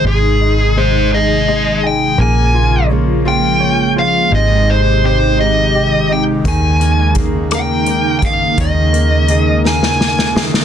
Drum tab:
HH |------------|------------|------------|x-x-x-x-x-x-|
SD |------------|------------|------------|------r-----|
BD |------------|------------|------------|o---o-----o-|

HH |x-x-x-------|
SD |------oooooo|
BD |o-----------|